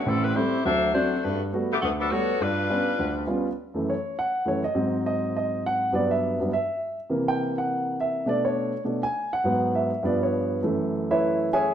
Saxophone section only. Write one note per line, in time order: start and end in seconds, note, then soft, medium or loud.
0.07 0.24 G3 medium
0.07 0.24 C4 medium
0.07 0.24 E4 medium
0.07 0.24 A4 medium
0.25 0.36 G3 medium
0.25 0.36 C4 medium
0.25 0.35 E4 medium
0.25 0.36 B4 medium
0.35 0.64 A3 medium
0.35 0.65 E4 medium
0.35 0.65 G4 medium
0.35 0.63 C5 medium
0.65 0.92 D4 medium
0.65 0.92 A4 medium
0.65 0.92 C5 medium
0.65 0.92 E5 medium
0.94 1.21 A3 medium
0.94 1.22 D4 medium
0.94 1.21 F#4 medium
0.94 1.21 C5 medium
1.24 1.41 A3 medium
1.24 1.41 D4 medium
1.24 1.41 F#4 medium
1.24 1.41 B4 medium
1.72 1.77 D3 medium
1.72 1.77 A3 medium
1.72 1.77 B3 medium
1.72 1.77 G4 medium
1.82 1.90 D3 medium
1.82 1.90 A3 medium
1.82 1.90 B3 medium
1.82 1.90 F#4 medium
2.00 2.10 F#3 medium
2.00 2.11 B3 medium
2.00 2.10 D4 medium
2.00 2.11 A4 medium
2.11 2.41 B3 medium
2.11 2.41 F#4 medium
2.11 2.41 A4 medium
2.11 2.41 C#5 loud
2.42 3.29 G3 medium
2.42 3.29 D4 medium
2.42 3.29 F4 medium
2.42 3.29 B4 medium